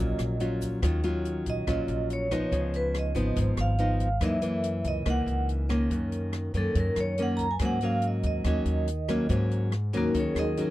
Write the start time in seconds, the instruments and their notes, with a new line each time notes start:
Already playing: upright bass A#1, nylon-string guitar A#2 F#3 C#4 F4, vibraphone D#5
0.19 upright bass A#1, cross-stick, closed hi-hat, shaker
0.40 nylon-string guitar F#3 C#4 F4, closed hi-hat
0.61 kick, closed hi-hat, shaker
0.82 upright bass D#2, nylon-string guitar D#3 F#3 C#4 F4, kick, cross-stick, closed hi-hat
1.03 nylon-string guitar F#3 C#4 F4, closed hi-hat
1.25 closed hi-hat
1.46 upright bass A#1, vibraphone D#5, kick, closed hi-hat
1.67 upright bass A#1, nylon-string guitar A#2 F#3 C#4 F4, kick, cross-stick, closed hi-hat
1.88 upright bass A#1, closed hi-hat
2.10 vibraphone C#5, closed hi-hat
2.31 nylon-string guitar F3 B3 D#4, kick, cross-stick, closed hi-hat
2.52 upright bass C#2, nylon-string guitar C#3, kick, closed hi-hat
2.74 vibraphone B4, closed hi-hat
2.94 cross-stick, closed hi-hat
2.99 vibraphone D#5
3.15 upright bass G#1, nylon-string guitar F3 B3 D#4, kick, closed hi-hat
3.36 upright bass G#1, nylon-string guitar G#2, kick, closed hi-hat
3.57 upright bass G#1, vibraphone F5, cross-stick, closed hi-hat
3.78 nylon-string guitar F3 B3 D#4, closed hi-hat
4.00 kick, closed hi-hat
4.21 upright bass F#2, nylon-string guitar F#2 E3 A#3 D#4, kick, cross-stick, closed hi-hat
4.26 vibraphone E5
4.42 nylon-string guitar E3 A#3, closed hi-hat
4.63 closed hi-hat
4.84 upright bass C#2, vibraphone D#5, kick, closed hi-hat
5.06 upright bass C#2, nylon-string guitar C#3 E3 A#3 D#4, kick, cross-stick, closed hi-hat
5.10 vibraphone F#5
5.26 upright bass C#2, closed hi-hat
5.49 closed hi-hat
5.69 nylon-string guitar D#3 A#3 C#4, kick, cross-stick, closed hi-hat
5.91 upright bass F#2, nylon-string guitar F#2, kick, closed hi-hat
6.12 closed hi-hat
6.33 cross-stick, closed hi-hat
6.54 upright bass F#2, nylon-string guitar D#3 A#3 C#4, vibraphone A4, kick, closed hi-hat
6.75 upright bass F#2, nylon-string guitar F#2, kick, closed hi-hat
6.80 vibraphone A#4
6.96 upright bass F#2, cross-stick, closed hi-hat
7.00 vibraphone C#5
7.17 nylon-string guitar D#3 A#3 C#4, closed hi-hat
7.22 vibraphone F#5
7.37 vibraphone A#5, kick, closed hi-hat
7.51 vibraphone G#5
7.59 upright bass G#2, nylon-string guitar G#2 F#3 A#3 C#4, kick, cross-stick, closed hi-hat
7.65 vibraphone F#5
7.81 nylon-string guitar F#3 A#3 C#4, closed hi-hat
7.85 vibraphone F5
8.02 closed hi-hat
8.08 vibraphone D#5
8.23 upright bass D#2, vibraphone D#5, kick, closed hi-hat
8.44 upright bass D#2, nylon-string guitar D#3 F#3 A#3 C#4, kick, cross-stick, closed hi-hat
8.65 upright bass D#2, closed hi-hat
8.87 closed hi-hat
9.08 nylon-string guitar F#3 A#3 C#4, kick, cross-stick, closed hi-hat
9.29 nylon-string guitar G#2 F#3 A#3 C#4, upright bass G#2, kick, closed hi-hat
9.51 closed hi-hat
9.72 cross-stick, closed hi-hat
9.93 upright bass D#2, nylon-string guitar F#3 A#3 C#4, kick, closed hi-hat
9.97 vibraphone A#3 D#4 F#4 A#4
10.14 upright bass D#2, nylon-string guitar D#3, kick, closed hi-hat
10.19 vibraphone C#4 G#4 A#4 C#5
10.35 upright bass D#2, vibraphone G#4 D#5, cross-stick, closed hi-hat
10.39 vibraphone D#4 A#4
10.57 nylon-string guitar F#3 A#3 C#4, vibraphone A#4, closed hi-hat
10.61 vibraphone A#3 D#4 F#4